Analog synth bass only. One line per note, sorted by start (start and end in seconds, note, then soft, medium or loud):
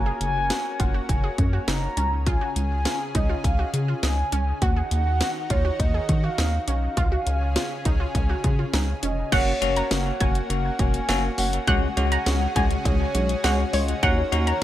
0.00 0.12 F#1 loud
0.21 0.52 F#1 medium
0.80 1.00 F#1 medium
1.09 1.30 F#1 loud
1.38 1.59 F#2 loud
1.68 1.88 F#1 loud
1.97 2.38 C#2 loud
2.56 2.87 C#2 loud
3.15 3.36 C#2 loud
3.44 3.65 C#2 loud
3.74 3.94 C#3 loud
4.03 4.24 C#2 loud
4.33 4.53 C#2 medium
4.62 4.82 D#2 loud
4.91 5.22 D#2 loud
5.50 5.71 D#2 loud
5.80 6.00 D#2 loud
6.09 6.29 D#3 loud
6.38 6.59 D#2 loud
6.68 6.88 B1 medium
6.97 7.18 C#2 loud
7.27 7.57 C#2 loud
7.86 8.06 C#2 loud
8.15 8.35 C#2 loud
8.44 8.65 C#3 loud
8.74 8.94 C#2 loud
9.03 9.24 F1 medium
9.32 9.53 F#1 loud
9.62 9.82 F#1 loud
9.91 10.12 F#1 loud
10.21 10.41 F#1 loud
10.50 10.71 F#1 loud
10.79 11.00 F1 medium
11.09 11.29 F#1 loud
11.38 11.59 F#1 loud
11.68 11.88 C#2 loud
11.97 12.18 C#2 loud
12.26 12.47 C#2 loud
12.56 12.77 C#2 loud
12.85 13.06 C#2 loud
13.15 13.35 B1 loud
13.44 13.65 C#2 loud
13.74 13.94 C#2 loud
14.03 14.24 D#2 loud
14.32 14.53 D#2 loud